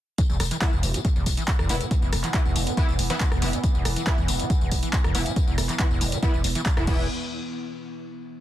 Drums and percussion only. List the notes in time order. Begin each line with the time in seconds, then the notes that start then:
0.18 kick, closed hi-hat, tambourine
0.30 tambourine
0.40 cross-stick, open hi-hat, tambourine
0.51 closed hi-hat, tambourine
0.61 kick, clap, closed hi-hat, tambourine
0.73 tambourine
0.83 open hi-hat, tambourine
0.94 closed hi-hat, tambourine
1.05 kick, closed hi-hat, tambourine
1.16 tambourine
1.26 kick, open hi-hat, tambourine
1.37 closed hi-hat, tambourine
1.48 kick, clap, closed hi-hat, tambourine
1.59 cross-stick, tambourine
1.69 open hi-hat, tambourine
1.81 closed hi-hat, tambourine
1.91 kick, closed hi-hat, tambourine
2.02 tambourine
2.13 cross-stick, open hi-hat, tambourine
2.24 clap, closed hi-hat, tambourine
2.34 kick, clap, closed hi-hat, tambourine
2.45 tambourine
2.56 open hi-hat, tambourine
2.67 closed hi-hat, tambourine
2.77 kick, closed hi-hat, tambourine
2.88 tambourine
2.99 open hi-hat, tambourine
3.10 closed hi-hat, tambourine
3.20 kick, clap, closed hi-hat, tambourine
3.32 cross-stick, tambourine
3.42 open hi-hat, tambourine
3.53 closed hi-hat, tambourine
3.64 kick, closed hi-hat, tambourine
3.75 tambourine
3.85 cross-stick, open hi-hat, tambourine
3.96 closed hi-hat, tambourine
4.07 kick, clap, closed hi-hat, tambourine
4.18 tambourine
4.28 open hi-hat, tambourine
4.40 closed hi-hat, tambourine
4.50 kick, closed hi-hat, tambourine
4.61 tambourine
4.72 kick, open hi-hat, tambourine
4.83 closed hi-hat, tambourine
4.93 kick, clap, closed hi-hat, tambourine
5.04 cross-stick, tambourine
5.15 open hi-hat, tambourine
5.26 closed hi-hat, tambourine
5.36 kick, closed hi-hat, tambourine
5.47 tambourine
5.58 cross-stick, open hi-hat, tambourine
5.69 clap, closed hi-hat, tambourine
5.79 kick, clap, closed hi-hat, tambourine
5.91 tambourine
6.01 open hi-hat, tambourine
6.12 closed hi-hat, tambourine
6.23 kick, closed hi-hat, tambourine
6.34 tambourine
6.44 open hi-hat, tambourine
6.55 closed hi-hat, tambourine
6.66 kick, clap, closed hi-hat, tambourine
6.77 cross-stick, tambourine
6.87 kick, crash